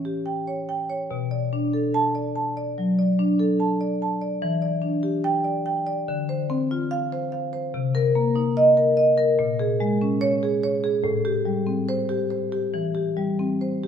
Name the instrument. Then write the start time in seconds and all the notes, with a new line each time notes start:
marimba
Already playing: C#4
0.05 G4
0.26 G5
0.48 C#5
0.69 G5
0.90 C#5
1.11 B2
1.31 D5
1.53 D4
1.73 A4
1.94 A5
2.15 D5
2.36 A5
2.57 D5
2.78 F#3
2.99 D5
3.19 D4
3.39 A4
3.60 A5
3.81 D5
4.02 A5
4.21 D5
4.42 E3
4.62 D5
4.82 D4
5.03 G4
5.24 G5
5.44 D5
5.66 G5
5.87 D5
6.08 D3
6.29 C5
6.50 C4
6.71 F4
6.91 F5
7.12 C5
7.32 F5
7.53 C5
7.74 C3
7.95 A#4
8.15 A#3
8.36 D#4
8.57 D#5
8.77 A#4
8.97 D#5
9.18 A#4
9.39 A#2
9.59 G#4
9.80 G#3
10.01 C#4
10.21 C#5
10.43 G#4
10.64 C#5
10.84 G#4
11.04 A2
11.25 G4
11.45 G3
11.67 C4
11.89 C5
12.09 G4
12.30 C5
12.52 G4
12.74 E3
12.95 G4
13.17 G3
13.39 C4
13.61 C5
13.84 G4